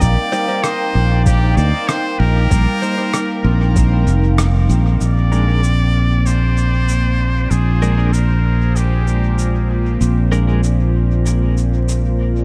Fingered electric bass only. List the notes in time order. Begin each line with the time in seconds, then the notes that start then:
0.01 A#1
0.95 A#1
1.57 D2
2.20 A#1
2.51 A#1
3.44 A#1
4.07 F1
4.69 A#1
5.01 A#1
7.51 A#1
10.01 A#1